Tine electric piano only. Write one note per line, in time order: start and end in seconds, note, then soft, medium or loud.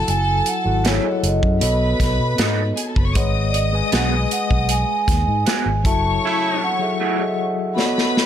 0.00 0.51 F#3 medium
0.00 0.52 E4 medium
0.00 0.52 F#4 medium
0.00 0.52 A4 medium
0.00 0.53 F#5 medium
0.64 0.98 F#3 medium
0.64 0.98 E4 medium
0.64 0.99 F#4 medium
0.64 0.99 A4 medium
0.64 0.99 F#5 medium
1.03 1.61 F#3 medium
1.03 1.61 E4 medium
1.03 1.62 G#4 medium
1.03 1.60 A4 medium
1.03 1.11 D#5 medium
1.12 1.66 F#5 medium
1.60 2.93 B3 medium
1.60 2.93 F#4 medium
1.60 2.94 A4 medium
1.60 2.94 C#5 medium
1.60 2.94 D#5 medium
3.14 3.65 G#3 medium
3.14 3.65 G#4 medium
3.14 3.65 B4 medium
3.14 3.65 D#5 medium
3.14 3.66 F#5 medium
3.72 4.06 G#3 medium
3.72 4.06 G#4 medium
3.72 4.07 B4 medium
3.72 4.07 D#5 medium
3.72 4.07 G#5 medium
4.10 5.43 G#3 medium
4.10 5.43 G#4 medium
4.10 5.44 B4 medium
4.10 5.44 D#5 medium
4.10 5.44 G#5 medium
5.84 6.67 F#3 medium
5.84 6.68 E4 medium
5.84 6.67 F#4 medium
5.84 6.68 A4 medium
5.84 6.68 E5 medium
6.79 7.13 F#3 medium
6.79 7.13 F#4 medium
6.79 7.14 G#4 medium
6.79 7.14 A4 medium
6.79 7.14 E5 medium
7.19 7.77 F#3 medium
7.19 7.76 F#4 medium
7.19 7.77 G#4 medium
7.19 7.76 A4 medium
7.19 7.27 D#5 medium
7.28 7.81 E5 medium
7.76 8.26 B3 medium
7.76 8.26 F#4 medium
7.76 8.26 A4 medium
7.76 8.26 C#5 medium
7.76 7.85 D5 medium
7.86 8.26 D#5 loud